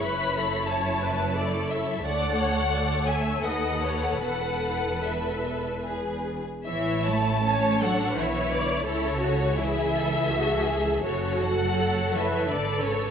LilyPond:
<<
  \new Staff \with { instrumentName = "Violin section" } { \time 3/4 \key a \major \tempo 4 = 84 b''4 a''4 d''8 e''8 | fis''4. gis''8 fis''4 | fis''4 e''4 r4 | e''8 a''4 fis''8 e''8 d''8 |
cis''4 e''2 | cis''8 fis''4 e''8 d''8 cis''8 | }
  \new Staff \with { instrumentName = "Viola section" } { \time 3/4 \key a \major b'8 a'8 cis''8 b'8 a'4 | d''8 cis''8 d''8 e''8 dis''8 cis''8 | b'2~ b'8 r8 | r4 cis''8 a'8 cis''4 |
a'8 fis'8 gis'8 a'8 gis'4 | fis'4 a'8 b'8 a'4 | }
  \new Staff \with { instrumentName = "Violin section" } { \time 3/4 \key a \major << { cis''2. | cis''2 b'4~ | b'2~ b'8 r8 | cis''4 cis''4 b'4 |
a'4 gis'4 a'4 | a'4 cis''4 b'4 | } \\ { e'2. | a'2.~ | a'2 gis'8 r8 | e'4 cis'8 d'8 e'4 |
e'8 fis'8 e'4 fis'8 gis'8 | a'2. | } >> }
  \new Staff \with { instrumentName = "Cello section" } { \clef bass \time 3/4 \key a \major fis,2. | d,2 dis,4 | e,2~ e,8 r8 | e8 a4 fis8 e8 d8 |
cis4 e2 | cis8 fis4 e8 d8 cis8 | }
  \new Staff \with { instrumentName = "Double bass section" } { \clef bass \time 3/4 \key a \major fis,,2. | d,2 dis,4 | e,,2~ e,,8 r8 | a,,2 b,,4 |
cis,2. | fis,,2 gis,,4 | }
>>